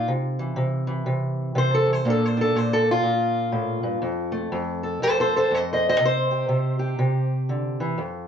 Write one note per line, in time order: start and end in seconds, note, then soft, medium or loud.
0.08 0.55 C3 medium
0.39 0.86 E3 medium
0.56 1.05 C3 medium
0.87 1.85 E3 medium
1.06 1.54 C3 medium
1.55 2.03 C3 medium
1.55 1.74 C5 loud
1.75 1.90 A4 medium
1.86 2.03 E3 soft
1.93 2.08 C5 loud
2.05 2.54 A#2 medium
2.05 4.01 A#3 soft
2.05 2.36 D4 soft
2.10 2.24 A4 medium
2.25 2.40 C5 medium
2.37 4.02 D4 medium
2.41 2.56 A4 medium
2.55 3.01 A#2 medium
2.55 2.72 C5 medium
2.73 2.89 A4 medium
2.91 4.38 F4 loud
3.02 4.03 A#2 medium
3.52 3.83 A2 medium
3.83 4.01 G2 medium
4.02 4.51 F2 medium
4.32 5.98 A3 medium
4.52 5.01 F2 medium
4.83 5.02 A4 medium
5.02 5.50 F2 medium
5.02 5.19 A4 loud
5.02 5.19 C5 loud
5.20 5.35 A4 medium
5.20 5.36 C5 loud
5.36 5.52 A4 medium
5.36 5.53 C5 medium
5.51 6.00 F2 medium
5.51 5.58 C5 medium
5.55 5.70 D#5 loud
5.73 5.79 C5 medium
5.73 5.88 D#5 medium
5.89 5.94 C5 medium
5.89 6.04 D#5 loud
6.00 6.47 C3 medium
6.05 7.52 C5 loud
6.31 6.78 G4 soft
6.49 6.97 C3 medium
6.79 7.96 G4 medium
6.99 7.96 C3 medium
7.49 7.80 D3 medium
7.80 7.99 E3 medium
7.98 8.28 F2 medium